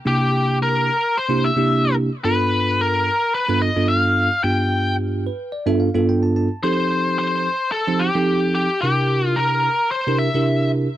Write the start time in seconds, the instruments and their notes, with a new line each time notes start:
0.05 tine electric piano C3 A#3 D4 E4 G4, lead electric guitar G4
0.63 lead electric guitar A#4
1.17 lead electric guitar C5
1.28 tine electric piano C3 A#3 D4 E4 G4
1.44 lead electric guitar E5
1.56 tine electric piano C3 A#3 D4 E4 G4
2.24 tine electric piano G2 B3 D4 F4 A4, lead electric guitar B4
2.81 lead electric guitar A#4
3.34 lead electric guitar B4
3.48 tine electric piano G2 B3 D4 F4 A4
3.62 lead electric guitar D#5
3.76 tine electric piano G2 B3 D4 F4 A4
3.88 lead electric guitar F5
4.43 tine electric piano G2 B3 D4 F4 G4, lead electric guitar G5
5.27 tine electric piano B4
5.52 tine electric piano D5
5.66 tine electric piano G2 B3 D4 F4 A4 E5
5.80 tine electric piano F5
5.94 tine electric piano G2 B3 D4 F4 A4
6.09 tine electric piano G5
6.23 tine electric piano A5
6.36 tine electric piano A5
6.63 tine electric piano F3 C4 D#4 G4 A4, lead electric guitar C5
7.19 lead electric guitar C5
7.72 lead electric guitar A4
7.87 tine electric piano F3 C4 D#4 G4 C5
7.99 lead electric guitar G4
8.15 tine electric piano F3 C4 D#4 G4 A4
8.55 lead electric guitar G4
8.82 tine electric piano C3 D4 E4 G4 A#4, lead electric guitar G4
9.27 lead electric guitar F4
9.36 lead electric guitar A#4
9.91 lead electric guitar C5
10.07 tine electric piano C3 D4 E4 G4 A#4
10.19 lead electric guitar E5
10.34 tine electric piano C3 D4 E4 G4 A#4